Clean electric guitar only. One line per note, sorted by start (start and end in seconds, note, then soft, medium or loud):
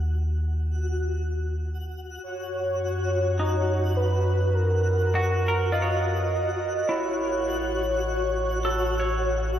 3.39 7.06 D#4 soft
5.15 7.45 F#4 medium
5.48 5.82 A#4 soft
5.72 7.44 F4 medium
5.82 8.08 C#5 soft
6.89 9.59 E4 medium
8.65 9.59 A4 medium
9.00 9.59 C#5 soft